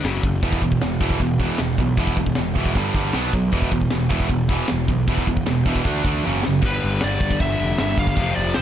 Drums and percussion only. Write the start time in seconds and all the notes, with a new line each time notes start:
0.05 snare, open hi-hat
0.23 kick, open hi-hat
0.43 kick, open hi-hat
0.53 kick
0.62 kick, open hi-hat
0.72 kick
0.82 snare, open hi-hat
1.00 kick, open hi-hat
1.10 kick
1.20 kick, open hi-hat
1.39 kick, open hi-hat
1.58 snare, open hi-hat
1.77 kick, open hi-hat
1.97 kick, open hi-hat
2.07 kick
2.17 kick, open hi-hat
2.26 kick
2.35 snare, open hi-hat
2.55 kick, open hi-hat
2.66 kick
2.75 kick, open hi-hat
2.94 kick, open hi-hat
3.13 snare, open hi-hat
3.33 kick, open hi-hat
3.53 kick, open hi-hat
3.62 kick
3.71 kick, open hi-hat
3.82 kick
3.91 snare, open hi-hat
4.10 kick, open hi-hat
4.20 kick
4.28 kick, open hi-hat
4.47 kick, open hi-hat
4.68 snare, open hi-hat
4.88 kick, open hi-hat
5.08 kick, open hi-hat
5.18 kick
5.27 kick, open hi-hat
5.37 kick
5.47 snare, open hi-hat
5.66 kick, open hi-hat
5.75 kick
5.85 kick, open hi-hat
6.05 kick, open hi-hat
6.24 high tom
6.43 snare
6.62 kick, crash
7.01 snare, crash
7.21 kick
7.31 kick
7.40 kick, crash
7.78 snare, crash
7.98 kick
8.07 kick
8.17 kick, crash
8.54 snare, crash